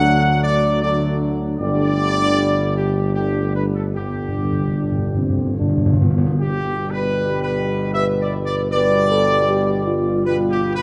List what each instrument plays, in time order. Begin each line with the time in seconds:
Already playing: tuba D2, trombone section D3 F#3, french horn section A3 D4, trumpet section F#5
0.43 trumpet section D5
0.82 trombone section D3 F#3, french horn section A3 D4, trumpet section D5
1.60 tuba G1, trombone section D3 G3, french horn section A3 D4, trumpet section D5
2.76 trumpet section G4
3.15 trombone section D3 G3, french horn section A3 D4, trumpet section G4
3.55 trumpet section B4
3.75 trumpet section A4
3.95 timpani G2, trombone section D3 G3, french horn section B3 D4, trumpet section G4
4.14 timpani G2
4.22 timpani G2
4.29 timpani G2
4.36 timpani G2
4.45 timpani G2
4.52 timpani G2
4.60 timpani G2
4.68 timpani G2
4.76 timpani G2, french horn section D4
4.84 timpani G2
4.92 timpani G2
4.99 timpani G2
5.06 timpani G2
5.15 timpani G2, french horn section C4
5.22 timpani G2
5.30 timpani G2
5.38 timpani G2
5.46 timpani G2
5.54 timpani G2
5.59 timpani G2, french horn section D4
5.69 timpani G2
5.78 timpani G2
5.86 timpani G2
5.94 timpani G2
6.00 timpani G2, french horn section B3
6.10 timpani G2
6.18 timpani G2
6.26 timpani G2
6.40 tuba G1, trombone section B2 G3, trumpet section G4
6.91 trumpet section B4
7.18 french horn section G4
7.43 trumpet section B4
7.94 french horn section B4, trumpet section E5
8.22 trumpet section D5
8.46 trumpet section D5
8.72 trombone section B2 G3, french horn section B4, trumpet section D5
9.11 french horn section A4
9.49 french horn section G4
9.87 french horn section F4
10.25 trombone section B2 G3, trumpet section B4
10.50 trumpet section G4
10.76 trumpet section B4